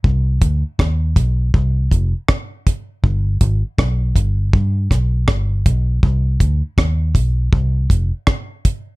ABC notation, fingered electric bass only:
X:1
M:4/4
L:1/16
Q:"Swing 16ths" 1/4=80
K:Cm
V:1 name="Fingered electric bass" clef=bass
C,,2 D,, z E,,2 =B,,,2 C,,2 F,,, z4 z | G,,,2 A,,, z =B,,,2 G,,,2 G,,2 B,,,2 G,,,2 B,,,2 | C,,2 D,, z E,,2 =B,,,2 C,,2 F,,, z4 z |]